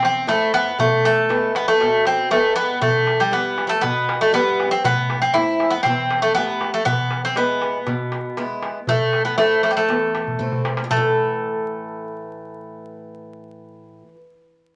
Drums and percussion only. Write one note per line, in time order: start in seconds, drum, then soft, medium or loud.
0.03 darbuka tek medium
0.15 darbuka tek soft
0.28 darbuka tek medium
0.41 darbuka tek soft
0.54 darbuka tek medium
0.79 darbuka dum loud
1.05 darbuka tek medium
1.18 darbuka tek soft
1.30 darbuka tek medium
1.55 darbuka tek medium
1.81 darbuka tek medium
2.05 darbuka tek medium
2.31 darbuka tek medium
2.56 darbuka tek medium
2.69 darbuka tek soft
2.82 darbuka dum medium
3.07 darbuka tek medium
3.32 darbuka tek medium
3.58 darbuka tek medium
3.70 darbuka tek soft
3.83 darbuka tek medium
3.83 darbuka dum medium
4.09 darbuka tek medium
4.22 darbuka tek soft
4.34 darbuka tek medium
4.47 darbuka tek soft
4.60 darbuka tek medium
4.84 darbuka dum loud
5.10 darbuka tek medium
5.23 darbuka tek soft
5.35 darbuka tek medium
5.60 darbuka tek medium
5.72 darbuka tek soft
5.85 darbuka tek medium
5.85 darbuka dum medium
6.11 darbuka tek medium
6.24 darbuka tek soft
6.36 darbuka tek medium
6.48 darbuka tek soft
6.61 darbuka tek medium
6.86 darbuka dum medium
7.11 darbuka tek medium
7.24 darbuka tek soft
7.36 darbuka tek medium
7.62 darbuka tek medium
7.74 darbuka tek soft
7.87 darbuka tek medium
7.87 darbuka dum medium
8.12 darbuka tek medium
8.25 darbuka tek soft
8.37 darbuka tek medium
8.50 darbuka tek soft
8.63 darbuka tek medium
8.87 darbuka dum medium
9.01 darbuka tek soft
9.13 darbuka tek medium
9.26 darbuka tek soft
9.38 darbuka tek medium
9.52 darbuka tek soft
9.64 darbuka tek medium
9.77 darbuka tek soft
9.90 darbuka tek medium
10.15 darbuka tek medium
10.27 darbuka dum soft
10.40 darbuka dum medium
10.52 darbuka dum medium
10.65 darbuka tek medium
10.77 darbuka tek medium
10.91 darbuka dum medium